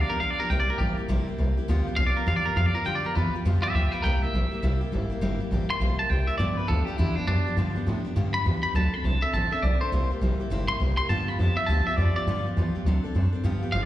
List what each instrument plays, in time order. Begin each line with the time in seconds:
0.01 clean electric guitar D5
0.09 steel-string acoustic guitar F3 B3 D4 G4, clean electric guitar A#4
0.20 upright bass B1, steel-string acoustic guitar F3 B3 D4 G4, clean electric guitar F5
0.31 clean electric guitar D5
0.39 steel-string acoustic guitar F3 B3 D4 G4, clean electric guitar A#4, muted upright bass stroke
0.50 upright bass C2, steel-string acoustic guitar C3 G3 A#3 E4 G4, clean electric guitar G5
0.60 clean electric guitar D5
0.68 steel-string acoustic guitar A#3 E4 G4, clean electric guitar A#4, muted upright bass stroke
0.78 upright bass A1, steel-string acoustic guitar G3 A#3 E4 G4, clean electric guitar G4
0.97 steel-string acoustic guitar A#3 E4 G4, muted upright bass stroke
1.08 upright bass A#1, steel-string acoustic guitar C3 G3 A#3 E4 G4
1.27 steel-string acoustic guitar A#3 E4 G4, muted upright bass stroke
1.38 upright bass C2, steel-string acoustic guitar G3 A#3 E4 G4
1.57 steel-string acoustic guitar A#3 E4 G4, muted upright bass stroke
1.68 upright bass D2, steel-string acoustic guitar G2 D3 F3 B3 F4 G4
1.87 steel-string acoustic guitar F3 B3 F4 G4
1.96 upright bass B1, steel-string acoustic guitar F3 B3 F4 G4, clean electric guitar F5
2.06 clean electric guitar D5
2.16 steel-string acoustic guitar F3 B3 F4 G4, clean electric guitar A#4
2.26 upright bass E2, steel-string acoustic guitar G2 D3 F3 B3 F4 G4, clean electric guitar F5
2.36 clean electric guitar D5
2.45 steel-string acoustic guitar F3 B3 F4 G4, clean electric guitar A#4, muted upright bass stroke
2.56 upright bass F2, steel-string acoustic guitar F3 B3 F4 G4, clean electric guitar F5
2.66 clean electric guitar D5
2.74 steel-string acoustic guitar F3 B3 F4 G4, clean electric guitar A#4, muted upright bass stroke
2.85 steel-string acoustic guitar G2 D3 F3 B3 F4 G4, upright bass G2, clean electric guitar G5
2.95 clean electric guitar D5
3.04 steel-string acoustic guitar F3 B3 F4 G4, clean electric guitar A#4, muted upright bass stroke
3.15 upright bass E2, steel-string acoustic guitar F3 B3 F4 G4, clean electric guitar B4
3.34 steel-string acoustic guitar F3 B3 F4 G4, muted upright bass stroke
3.45 upright bass F2, steel-string acoustic guitar G2 D3 F3 B3 F4 G4
3.62 steel-string acoustic guitar F3 B3 F4 G4, clean electric guitar G4 E5, muted upright bass stroke
3.74 upright bass D2, steel-string acoustic guitar F3 B3 F4 G4, clean electric guitar G4 E5
3.91 steel-string acoustic guitar F3 B3 F4 G4, clean electric guitar B4 G5, muted upright bass stroke
4.02 upright bass C2, steel-string acoustic guitar C3 G3 A#3 E4 G4, clean electric guitar A#4 G5
4.22 steel-string acoustic guitar A#3 E4 G4, clean electric guitar E5, muted upright bass stroke
4.33 upright bass A#1, steel-string acoustic guitar G3 A#3 E4 G4
4.52 steel-string acoustic guitar A#3 E4 G4, muted upright bass stroke
4.62 upright bass C2, steel-string acoustic guitar C3 G3 A#3 E4 G4
4.81 steel-string acoustic guitar A#3 E4 G4, muted upright bass stroke
4.92 upright bass G#1, steel-string acoustic guitar G3 A#3 E4 G4
5.10 steel-string acoustic guitar A#3 E4 G4, muted upright bass stroke
5.21 upright bass G1, steel-string acoustic guitar C3 G3 A#3 E4 G4
5.40 steel-string acoustic guitar A#3 E4 G4, muted upright bass stroke
5.51 upright bass A1, steel-string acoustic guitar G3 A#3 E4 G4
5.69 steel-string acoustic guitar A#3 E4 G4, clean electric guitar C6, muted upright bass stroke
5.80 upright bass A#1, steel-string acoustic guitar C3 G3 A#3 E4 G4
5.99 steel-string acoustic guitar A#3 E4 G4, clean electric guitar A5, muted upright bass stroke
6.10 upright bass C2, steel-string acoustic guitar G3 A#3 E4 G4, clean electric guitar G5
6.27 steel-string acoustic guitar A#3 E4 G4, clean electric guitar E5, muted upright bass stroke
6.38 steel-string acoustic guitar G2 D3 F3 B3 D4 G4, upright bass G2, clean electric guitar D5
6.57 steel-string acoustic guitar F3 B3 D4 G4, clean electric guitar B4, muted upright bass stroke
6.68 upright bass D2, steel-string acoustic guitar F3 B3 D4 G4, clean electric guitar A4
6.85 steel-string acoustic guitar B3 D4 G4, clean electric guitar G4
6.89 steel-string acoustic guitar F3
6.97 upright bass E2, steel-string acoustic guitar G2 D3 F3 B3 D4 G4, clean electric guitar E4
7.16 steel-string acoustic guitar F3 B3 D4 G4, clean electric guitar D4, muted upright bass stroke
7.27 upright bass F#2, steel-string acoustic guitar F3 B3 D4 G4, clean electric guitar D4
7.45 steel-string acoustic guitar F3 B3 D4 G4, muted upright bass stroke
7.57 upright bass G2, steel-string acoustic guitar G2 D3 F3 B3 D4 G4
7.75 steel-string acoustic guitar F3 B3 D4 G4, muted upright bass stroke
7.87 upright bass A2, steel-string acoustic guitar F3 B3 D4 G4
8.05 steel-string acoustic guitar F3 B3 D4 G4, muted upright bass stroke
8.16 steel-string acoustic guitar G2 D3 F3 B3 D4 G4, upright bass G2
8.34 steel-string acoustic guitar F3 B3 D4 G4, clean electric guitar B5, muted upright bass stroke
8.44 upright bass E2, steel-string acoustic guitar F3 B3 D4 G4
8.63 steel-string acoustic guitar F3 B3 D4 G4, clean electric guitar B5, muted upright bass stroke
8.74 upright bass D2, steel-string acoustic guitar D3 F#3 C4 D4 A4, clean electric guitar A5
8.93 steel-string acoustic guitar C4 D4 A4, clean electric guitar B5
9.04 upright bass C2, steel-string acoustic guitar F#3 C4 D4 A4, clean electric guitar A5
9.22 steel-string acoustic guitar C4 D4 A4, clean electric guitar E5
9.33 upright bass A1, steel-string acoustic guitar D3 F#3 C4 D4 A4, clean electric guitar A5
9.51 steel-string acoustic guitar C4 D4 A4, clean electric guitar E5, muted upright bass stroke
9.62 upright bass B1, steel-string acoustic guitar F#3 C4 D4 A4, clean electric guitar D5
9.81 steel-string acoustic guitar C4 D4 A4, clean electric guitar C5
9.92 upright bass C2, steel-string acoustic guitar C3 G3 A#3 E4 G4
10.10 steel-string acoustic guitar A#3 E4 G4, muted upright bass stroke
10.21 upright bass A#1, steel-string acoustic guitar G3 A#3 E4 G4
10.39 steel-string acoustic guitar A#3 E4 G4, muted upright bass stroke
10.50 upright bass G1, steel-string acoustic guitar C3 G3 A#3 E4 G4
10.68 steel-string acoustic guitar A#3 E4, clean electric guitar C6, muted upright bass stroke
10.80 upright bass C2, steel-string acoustic guitar G3 A#3 E4 G4
10.97 steel-string acoustic guitar A#3 E4 G4, clean electric guitar C6, muted upright bass stroke
11.09 steel-string acoustic guitar G2 D3 F3 B3 F4 G4, upright bass G2, clean electric guitar A5
11.27 steel-string acoustic guitar F3 B3 F4 G4, clean electric guitar B5, muted upright bass stroke
11.39 upright bass F2, steel-string acoustic guitar F3 B3 F4 G4, clean electric guitar A5
11.57 steel-string acoustic guitar F3 B3 F4 G4, clean electric guitar E5, muted upright bass stroke
11.66 upright bass D2, steel-string acoustic guitar G2 D3 F3 B3 F4 G4, clean electric guitar A5
11.87 steel-string acoustic guitar F3 B3 F4 G4, clean electric guitar E5
11.97 upright bass F2, steel-string acoustic guitar F3 B3 F4 G4, clean electric guitar D5
12.15 steel-string acoustic guitar F3 B3 F4 G4, clean electric guitar D5, muted upright bass stroke
12.27 upright bass G2, steel-string acoustic guitar G2 D3 F3 B3 F4 G4
12.45 steel-string acoustic guitar F3 B3 F4 G4, muted upright bass stroke
12.56 upright bass E2, steel-string acoustic guitar F3 B3 F4 G4
12.75 steel-string acoustic guitar F3 B3 F4 G4, muted upright bass stroke
12.85 upright bass D2, steel-string acoustic guitar D3 F#3 C4 D4 A4
13.04 steel-string acoustic guitar C4 D4 A4
13.14 upright bass F#2, steel-string acoustic guitar F#3 C4 D4 A4
13.33 steel-string acoustic guitar C4 D4 A4, muted upright bass stroke
13.43 steel-string acoustic guitar G2 D3 F3 B3 F4 G4, upright bass G2
13.62 steel-string acoustic guitar F3 B3 F4 G4, muted upright bass stroke
13.72 upright bass G1, steel-string acoustic guitar F3 B3 F4 G4, clean electric guitar F5